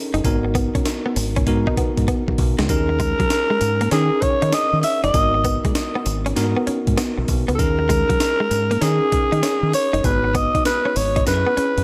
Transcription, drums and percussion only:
0.14 closed hi-hat soft
0.24 kick loud
0.24 closed hi-hat medium
0.24 tambourine medium
0.55 kick loud
0.55 closed hi-hat medium
0.55 tambourine medium
0.75 kick loud
0.75 closed hi-hat medium
0.85 snare loud
0.85 closed hi-hat medium
0.85 tambourine medium
1.16 open hi-hat medium
1.16 tambourine medium
1.36 kick medium
1.36 closed hi-hat medium
1.47 kick medium
1.47 closed hi-hat medium
1.67 kick medium
1.77 kick medium
1.77 closed hi-hat medium
1.97 kick medium
1.97 closed hi-hat medium
2.08 kick medium
2.08 closed hi-hat medium
2.28 kick medium
2.38 kick loud
2.38 open hi-hat medium
2.59 snare loud
2.59 closed hi-hat soft
2.69 kick loud
2.69 closed hi-hat medium
2.69 tambourine medium
3.00 kick loud
3.00 closed hi-hat medium
3.00 tambourine medium
3.20 kick medium
3.20 closed hi-hat medium
3.30 snare loud
3.30 closed hi-hat medium
3.30 tambourine medium
3.61 closed hi-hat medium
3.61 tambourine medium
3.81 closed hi-hat medium
3.91 snare medium
3.91 closed hi-hat medium
3.91 tambourine medium
4.22 kick medium
4.22 closed hi-hat medium
4.42 closed hi-hat medium
4.53 snare loud
4.53 closed hi-hat medium
4.53 tambourine medium
4.83 open hi-hat medium
4.83 tambourine medium
5.04 closed hi-hat soft
5.14 kick loud
5.14 closed hi-hat medium
5.14 tambourine medium
5.44 kick medium
5.44 closed hi-hat medium
5.44 tambourine medium
5.65 kick loud
5.65 closed hi-hat medium
5.75 snare loud
5.75 closed hi-hat medium
5.75 tambourine medium
6.06 closed hi-hat medium
6.06 tambourine medium
6.26 closed hi-hat medium
6.36 snare medium
6.36 closed hi-hat medium
6.36 tambourine medium
6.67 closed hi-hat medium
6.87 kick medium
6.87 closed hi-hat medium
6.98 snare loud
6.98 closed hi-hat medium
6.98 tambourine medium
7.28 kick loud
7.28 open hi-hat medium
7.28 tambourine medium
7.49 closed hi-hat soft
7.59 kick loud
7.59 closed hi-hat medium
7.59 tambourine medium
7.89 kick medium
7.89 closed hi-hat medium
7.89 tambourine medium
8.10 kick loud
8.10 closed hi-hat medium
8.20 snare loud
8.20 closed hi-hat medium
8.20 tambourine medium
8.51 closed hi-hat medium
8.51 tambourine medium
8.71 closed hi-hat medium
8.82 snare medium
8.82 closed hi-hat medium
8.82 tambourine medium
9.12 kick medium
9.12 closed hi-hat medium
9.33 closed hi-hat medium
9.43 snare loud
9.43 closed hi-hat medium
9.43 tambourine medium
9.73 open hi-hat medium
9.73 tambourine medium
9.94 closed hi-hat soft
10.04 kick medium
10.04 closed hi-hat medium
10.04 tambourine medium
10.35 kick medium
10.35 closed hi-hat medium
10.35 tambourine medium
10.55 kick medium
10.55 closed hi-hat medium
10.65 snare loud
10.65 closed hi-hat medium
10.65 tambourine medium
10.96 open hi-hat medium
10.96 tambourine medium
11.16 kick medium
11.16 closed hi-hat medium
11.27 snare medium
11.27 closed hi-hat medium
11.27 tambourine medium
11.57 closed hi-hat medium
11.78 closed hi-hat medium

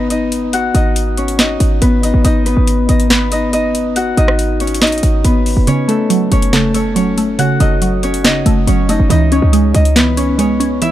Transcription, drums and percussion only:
0.10 closed hi-hat medium
0.32 closed hi-hat medium
0.53 closed hi-hat medium
0.75 closed hi-hat medium
0.96 closed hi-hat medium
1.17 closed hi-hat medium
1.28 closed hi-hat medium
1.39 snare loud
1.39 closed hi-hat medium
1.60 closed hi-hat medium
1.82 closed hi-hat medium
2.03 closed hi-hat medium
2.25 closed hi-hat medium
2.46 closed hi-hat medium
2.67 closed hi-hat medium
2.89 closed hi-hat medium
2.89 open hi-hat medium
3.00 closed hi-hat medium
3.10 snare loud
3.10 closed hi-hat medium
3.32 closed hi-hat medium
3.53 closed hi-hat medium
3.75 closed hi-hat medium
3.96 closed hi-hat medium
4.17 closed hi-hat medium
4.28 cross-stick loud
4.39 closed hi-hat medium
4.60 closed hi-hat soft
4.60 open hi-hat medium
4.67 closed hi-hat medium
4.74 closed hi-hat medium
4.82 snare loud
4.82 closed hi-hat medium
4.87 closed hi-hat medium
4.92 closed hi-hat medium
4.98 closed hi-hat medium
5.03 closed hi-hat medium
5.25 closed hi-hat medium
5.46 open hi-hat medium
5.67 closed hi-hat medium
5.89 closed hi-hat medium
6.10 closed hi-hat medium
6.32 closed hi-hat medium
6.32 open hi-hat medium
6.42 closed hi-hat medium
6.53 snare loud
6.53 closed hi-hat medium
6.74 closed hi-hat medium
6.96 closed hi-hat medium
7.18 closed hi-hat medium
7.39 closed hi-hat medium
7.60 closed hi-hat medium
7.82 closed hi-hat medium
8.03 closed hi-hat medium
8.14 closed hi-hat medium
8.25 snare loud
8.25 closed hi-hat medium
8.46 closed hi-hat medium
8.67 closed hi-hat medium
8.89 closed hi-hat medium
9.10 closed hi-hat medium
9.32 closed hi-hat medium
9.53 closed hi-hat medium
9.74 closed hi-hat medium
9.74 open hi-hat medium
9.85 closed hi-hat medium
9.96 snare loud
9.96 closed hi-hat medium
10.17 closed hi-hat medium
10.39 closed hi-hat medium
10.61 closed hi-hat medium
10.82 closed hi-hat medium

